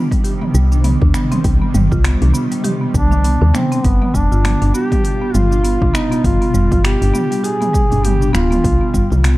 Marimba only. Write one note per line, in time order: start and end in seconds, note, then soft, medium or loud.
0.00 0.11 B3 loud
0.11 0.23 G3 medium
0.24 0.34 G4 medium
0.42 0.54 B3 medium
0.54 0.71 G3 medium
0.72 0.84 D4 medium
0.84 1.01 B3 medium
1.01 1.14 D4 medium
1.14 1.31 B3 loud
1.32 1.44 C4 loud
1.44 1.54 G3 medium
1.61 1.74 B3 medium
1.74 1.90 G3 medium
1.92 2.04 F4 medium
2.04 2.21 B3 medium
2.22 2.34 D4 medium
2.34 2.51 B3 loud
2.51 2.63 G3 medium
2.64 2.74 G4 medium
2.81 2.93 B3 medium
2.94 3.11 G3 medium
3.11 3.24 D4 medium
3.24 3.41 B3 medium
3.41 3.54 D4 medium
3.54 3.71 B3 loud
3.72 3.84 C4 loud
3.85 3.94 G3 medium
4.02 4.14 B3 medium
4.14 4.30 G3 medium
4.32 4.44 F4 medium
4.44 4.61 B3 medium
4.62 4.74 D4 medium
4.74 4.91 B3 loud
4.92 5.03 G3 medium
5.04 5.14 G4 medium
5.22 5.34 B3 medium
5.34 5.51 G3 medium
5.51 5.64 D4 medium
5.64 5.81 B3 medium
5.81 5.94 D4 medium
5.94 6.10 B3 loud
6.11 6.24 B3 loud
6.24 6.34 G3 medium
6.41 6.54 B3 medium
6.54 6.70 G3 loud
6.71 6.84 F4 medium
6.84 7.01 B3 medium
7.01 7.14 D4 medium
7.14 7.31 B3 loud
7.31 7.43 G3 medium
7.44 7.54 G4 medium
7.61 7.73 B3 medium
7.73 7.90 G3 medium
7.91 8.03 D4 medium
8.04 8.21 B3 medium
8.21 8.33 D4 medium
8.33 8.49 B3 loud
8.51 8.63 B3 loud
8.63 8.74 G3 medium
8.81 8.93 B3 medium
8.94 9.10 G3 loud
9.11 9.23 F4 medium
9.23 9.38 B3 medium